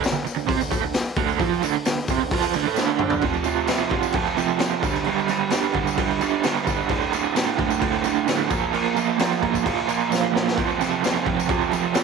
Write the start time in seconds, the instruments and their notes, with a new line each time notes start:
0.02 overdriven electric guitar D2, snare, open hi-hat, tambourine
0.12 overdriven electric guitar D2, tambourine
0.17 snare
0.25 muted overdriven electric guitar stroke, open hi-hat, tambourine
0.36 overdriven electric guitar D2, tambourine
0.47 overdriven electric guitar C3 C4, kick, open hi-hat, tambourine
0.59 overdriven electric guitar D2, tambourine
0.71 overdriven electric guitar A2 A3, kick, open hi-hat, tambourine
0.82 overdriven electric guitar D2
0.93 snare, open hi-hat, tambourine
1.16 overdriven electric guitar D2 D3, kick, open hi-hat
1.29 tambourine
1.39 overdriven electric guitar F2 F3, kick, open hi-hat, tambourine
1.52 tambourine
1.62 overdriven electric guitar D2 D3, open hi-hat, tambourine
1.74 muted overdriven electric guitar stroke, tambourine
1.85 overdriven electric guitar D2, snare, open hi-hat, tambourine
1.98 snare
2.08 overdriven electric guitar C3 C4, kick, open hi-hat, tambourine
2.21 overdriven electric guitar D2, tambourine
2.31 overdriven electric guitar F2 F3, kick, open hi-hat, tambourine
2.42 tambourine
2.54 overdriven electric guitar D2 D3, open hi-hat, tambourine
2.66 overdriven electric guitar A2 A3, tambourine
2.76 overdriven electric guitar D2 D3, snare, tambourine
2.99 overdriven electric guitar D3 D4, mid tom
3.10 floor tom, tambourine
3.21 overdriven electric guitar F2 C3 F3, kick, tambourine, crash
3.33 tambourine
3.44 overdriven electric guitar F2 C3 F3, tambourine, crash
3.57 tambourine
3.67 overdriven electric guitar F2 C3 F3, snare, tambourine, crash
3.80 tambourine
3.90 overdriven electric guitar F2 C3 F3, kick, crash
4.03 tambourine
4.12 overdriven electric guitar F2 C3, kick, crash
4.17 overdriven electric guitar F3
4.27 tambourine
4.36 overdriven electric guitar F2 C3 F3, tambourine, crash
4.59 overdriven electric guitar F2 C3 F3, snare, tambourine, crash
4.82 overdriven electric guitar G2 D3 G3, kick, tambourine, crash
4.94 snare, tambourine
5.04 overdriven electric guitar G2 D3 G3, tambourine, crash
5.18 tambourine
5.28 overdriven electric guitar G2 D3 G3, snare, tambourine, crash
5.50 overdriven electric guitar G2 D3 G3, snare, tambourine, crash
5.64 tambourine
5.74 overdriven electric guitar G2 D3 G3, kick, crash
5.87 tambourine
5.98 overdriven electric guitar G2 D3 G3, kick, crash
6.11 tambourine
6.21 overdriven electric guitar G2 D3 G3, tambourine, crash
6.43 overdriven electric guitar G2 D3 G3, snare, tambourine, crash
6.56 tambourine
6.67 overdriven electric guitar G2 D3 G3, kick, tambourine, crash
6.89 overdriven electric guitar D2 A2 D3, kick, tambourine, crash
7.02 tambourine
7.13 overdriven electric guitar D2 A2 D3, tambourine, crash
7.35 overdriven electric guitar D2 A2 D3, snare, tambourine, crash
7.58 overdriven electric guitar D2 A2 D3, kick, crash
7.70 tambourine
7.81 overdriven electric guitar D2 A2 D3, kick, tambourine, crash
7.92 tambourine
8.04 overdriven electric guitar D2 A2 D3, tambourine, crash
8.27 overdriven electric guitar D2 A2 D3, snare, tambourine, crash
8.49 overdriven electric guitar A#2 F3 A#3, kick, tambourine, crash
8.62 tambourine
8.72 overdriven electric guitar A#2 F3 A#3, tambourine, crash
8.85 tambourine
8.95 overdriven electric guitar A#2 F3 A#3, tambourine, crash
9.19 overdriven electric guitar A#2 F3 A#3, snare, tambourine, crash
9.32 tambourine
9.41 overdriven electric guitar A#2 F3 A#3, kick, crash
9.54 kick, tambourine
9.64 overdriven electric guitar A#2 F3 A#3, kick, tambourine, crash
9.78 tambourine
9.87 overdriven electric guitar A#2 F3 A#3, tambourine, crash
10.01 tambourine
10.11 overdriven electric guitar A#2 F3 A#3, snare, tambourine
10.33 overdriven electric guitar A#2 F3 A#3, snare
10.47 snare, tambourine
10.56 overdriven electric guitar F2 C3 F3, kick, tambourine, crash
10.69 tambourine
10.80 overdriven electric guitar F2 C3 F3, snare, tambourine, crash
10.93 tambourine
11.02 overdriven electric guitar F2 C3 F3, snare, tambourine, crash
11.26 overdriven electric guitar F2 C3 F3, kick, crash
11.40 tambourine
11.48 overdriven electric guitar F2 C3 F3, kick, crash
11.61 tambourine
11.71 overdriven electric guitar F2 C3 F3, tambourine, crash
11.94 overdriven electric guitar F2 C3 F3, snare, tambourine, crash